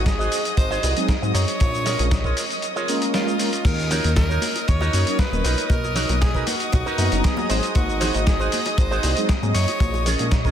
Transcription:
Already playing: G#1 D#5 D#6
0.06 G#4, kick, snare, closed hi-hat, cabasa
0.19 F#4 G#4 C5 D#5, cabasa
0.32 open hi-hat, cabasa
0.45 closed hi-hat, cabasa
0.57 G#1 C5, muted clean electric guitar stroke, kick, closed hi-hat, cabasa
0.70 F#4 G#4 C5 D#5, cabasa
0.83 C2, open hi-hat, cabasa
0.96 F#3 G#3 C4 D#4 G#4, closed hi-hat, cabasa
1.09 kick, snare, closed hi-hat, cabasa
1.22 G#2 F#3 G#3 C4 D#4 G#4, muted clean electric guitar stroke, cabasa
1.34 F#2 C#5, muted clean electric guitar stroke, open hi-hat, cabasa
1.48 closed hi-hat, cabasa
1.60 A#1, kick, closed hi-hat, cabasa
1.73 muted clean electric guitar stroke, cabasa
1.85 F4 G#4 A#4 C#5, snare, open hi-hat, cabasa
1.99 A#1 G#3 A#3 C#4 F4 A#4, closed hi-hat, cabasa
2.11 kick, snare, closed hi-hat, cabasa
2.24 F4 G#4 A#4 C#5, kick, cabasa
2.37 open hi-hat, cabasa
2.50 open hi-hat, cabasa
2.62 muted clean electric guitar stroke, closed hi-hat, cabasa
2.76 F4 G#4 A#4 C#5, cabasa
2.88 G#3 A#3 C#4 F4 A#4, open hi-hat, cabasa
3.02 closed hi-hat, cabasa
3.14 F4, snare, closed hi-hat, cabasa
3.27 muted clean electric guitar stroke, cabasa
3.39 G#3 A#3 C#4 F4 A#4, muted clean electric guitar stroke, open hi-hat, cabasa
3.53 closed hi-hat, cabasa
3.65 D#2 A#4 D#5 D#6, kick, closed hi-hat, crash, high conga, cabasa
3.78 muted clean electric guitar stroke, cabasa
3.90 D#4 F#4 A#4 C#5, open hi-hat, high bongo, low conga, cabasa
4.04 D#2, closed hi-hat, high conga, cabasa
4.16 A#4, kick, snare, closed hi-hat, high bongo, cabasa
4.29 D#4 F#4 A#4 C#5, cabasa
4.41 open hi-hat, high conga, cabasa
4.56 closed hi-hat, high bongo, cabasa
4.67 D#2 C#5, muted clean electric guitar stroke, kick, closed hi-hat, cabasa
4.81 D#4 F#4 A#4 C#5, high bongo, cabasa
4.93 F#2, open hi-hat, high conga, cabasa
5.06 F#3 A#3 C#4 D#4 A#4, closed hi-hat, cabasa
5.19 B4, kick, snare, closed hi-hat, high bongo, cabasa
5.32 D#1 F#3 A#3 C#4 D#4 A#4, muted clean electric guitar stroke, high conga, cabasa
5.44 B1 D#4 F#4 A#4 B4, open hi-hat, high bongo, cabasa
5.58 closed hi-hat, cabasa
5.70 B1 A#4, kick, closed hi-hat, high conga, cabasa
5.84 muted clean electric guitar stroke, high bongo, cabasa
5.95 D#4 F#4 A#4 C#5, open hi-hat, low conga, cabasa
6.09 B1 F#3 A#3 B3 D#4 A#4, closed hi-hat, high bongo, high conga, cabasa
6.21 G#4, kick, snare, closed hi-hat, cabasa
6.34 D#4 F#4 A#4 B4, kick, cabasa
6.47 F#4, open hi-hat, high bongo, high conga, cabasa
6.60 closed hi-hat, cabasa
6.72 B1, muted clean electric guitar stroke, kick, closed hi-hat, high bongo, cabasa
6.86 D#4 F#4 A#4 B4, cabasa
6.98 F#2 F#3 B3 D#4 A#5, open hi-hat, high conga, cabasa
7.12 F#1, closed hi-hat, high bongo, cabasa
7.24 G#4, kick, snare, closed hi-hat, cabasa
7.37 muted clean electric guitar stroke, high bongo, high conga, cabasa
7.49 G#1 F#3 G#3 C4 D#4 F#4 G#4 C5, open hi-hat, cabasa
7.63 closed hi-hat, cabasa
7.75 G#1 F#4, kick, closed hi-hat, high bongo, high conga, cabasa
7.88 muted clean electric guitar stroke, cabasa
8.00 D#4 F#4 G#4 C5, open hi-hat, high bongo, low conga, cabasa
8.14 G#1, closed hi-hat, high conga, cabasa
8.27 G#4, kick, snare, closed hi-hat, cabasa
8.40 D#4 F#4 G#4 C5, high bongo, cabasa
8.52 open hi-hat, high conga, cabasa
8.66 closed hi-hat, high bongo, cabasa
8.78 G#1 C5, muted clean electric guitar stroke, kick, closed hi-hat, cabasa
8.91 D#4 F#4 G#4 C5, cabasa
9.03 C2, open hi-hat, high bongo, high conga, cabasa
9.16 F#3 G#3 C4 D#4 G#4, closed hi-hat, cabasa
9.29 kick, snare, closed hi-hat, high bongo, cabasa
9.42 G#2 F#3 G#3 C4 D#4 G#4, muted clean electric guitar stroke, high conga, cabasa
9.54 F#2 C#5, muted clean electric guitar stroke, open hi-hat, cabasa
9.68 closed hi-hat, high bongo, cabasa
9.80 A#1, kick, closed hi-hat, high conga, cabasa
9.94 muted clean electric guitar stroke, high bongo, cabasa
10.06 C#4 F4 G#4 A#4, open hi-hat, low conga, cabasa
10.19 A#1 G#3 A#3 C#4 F4 A#4, closed hi-hat, high conga, cabasa
10.31 kick, snare, closed hi-hat, high bongo, cabasa
10.45 C#4 F4 G#4 A#4, kick, cabasa

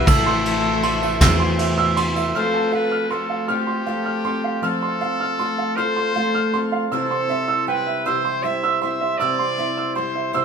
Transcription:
Already playing: E3
0.06 A1 A2 C3 E3 A3 C4 E4 A4 E6, kick, ride, tambourine
0.27 C6
0.45 ride, tambourine
0.83 A3 C4 E4 A4 C6, ride
1.02 E5, tambourine
1.21 E2 A2 E3 A3 C4 E4 A4 E6, kick, snare, ride, tambourine
1.40 C6
1.58 E5, ride, tambourine
1.78 E6
1.97 A3 C4 E4 A4 C6, ride
2.16 E5, tambourine
2.35 F3 A3 C4 F4 A4 C5 F6
2.54 A5
2.72 C4 F4 A4 B4 F5
2.92 F6
3.10 A3 C4 F4 A4 C6
3.30 F5
3.48 F3 A3 C4 F4 G4 A4 F6
3.67 C6
3.86 A3 C4 F4 A4 F5
4.05 F6
4.25 C4 F4 A4 C6
4.44 F5
4.63 F3 A3 C4 F4 A4 F6
4.82 C6
5.01 C4 F4 A4 F5
5.20 F6
5.39 A3 C4 F4 A4 C6
5.58 F5
5.76 F3 A3 C4 F4 A4 C5 F6
5.97 C6
6.14 A3 C4 F4 A4 F5
6.35 F6
6.53 C4 F4 A4 C6
6.72 F5
6.91 C3 E3 G3 C4 E4 G4 A4 C5 E6
7.11 C6
7.29 G3 C4 E4 C5 E5
7.48 E6
7.67 G3 C4 E4 B4 G5
7.87 E5
8.06 C3 E3 G3 C4 E4 G4 C5 E6
8.25 C6
8.43 G3 C4 E4 C5 E5
8.63 E6
8.81 G3 C4 E4 C5 E5 C6
9.01 E5
9.18 C3 E3 G3 C4 E4 D5 E6
9.22 C5
9.39 C6
9.58 G3 C4 E4 C5 E5
9.77 E6
9.95 G3 C4 E4 C5 C6
10.16 E5
10.33 C3 E3 G3 C4 E4 C5 E6

